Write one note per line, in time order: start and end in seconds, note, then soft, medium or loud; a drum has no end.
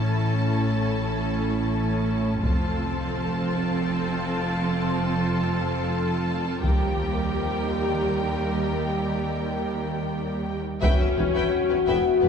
0.00 2.40 A1 soft
0.00 2.40 A2 soft
0.00 2.26 A3 soft
0.00 2.26 C#4 soft
0.00 2.40 C#4 soft
0.00 2.40 E4 soft
0.00 2.42 A4 soft
0.00 2.41 A5 soft
2.42 6.64 F1 soft
2.42 6.64 F2 soft
2.42 7.64 F3 soft
2.42 6.63 C4 soft
2.42 6.59 C4 soft
2.42 6.59 F4 soft
2.42 6.59 A4 soft
2.42 6.59 A5 soft
2.42 taiko soft
6.63 10.63 D#2 soft
6.63 10.59 G3 soft
6.63 10.47 A#3 soft
6.63 10.59 G4 soft
6.63 10.63 A#4 soft
6.63 10.59 G5 soft
6.63 taiko soft
7.69 10.51 G3 soft
10.82 10.89 E1 soft
10.82 10.90 E1 soft
10.82 10.90 E2 soft
10.82 11.83 C#4 medium
10.82 12.29 F#4 medium
10.82 10.99 B4 soft
10.82 10.98 E5 soft
10.82 10.99 G5 soft
10.82 taiko medium
10.82 impact soft
11.00 11.07 E2 soft
11.00 11.08 B4 soft
11.00 11.07 E5 soft
11.17 11.24 E1 soft
11.17 11.25 E1 soft
11.17 11.25 E2 soft
11.17 11.24 G4 soft
11.17 11.24 B4 soft
11.17 11.25 B4 soft
11.35 11.43 E2 soft
11.35 11.51 B4 soft
11.35 11.51 E5 soft
11.35 11.51 G5 soft
11.69 11.77 E2 soft
11.69 11.76 G4 soft
11.69 11.76 B4 soft
11.69 11.77 B4 soft
11.87 11.94 E1 soft
11.87 11.95 E2 soft
11.87 12.22 B3 soft
11.87 12.04 B4 soft
11.87 12.03 E5 soft
11.87 12.04 G5 soft
12.21 12.29 E1 soft
12.21 12.29 E2 soft
12.21 12.29 A3 soft
12.21 12.29 G4 soft
12.21 12.29 B4 soft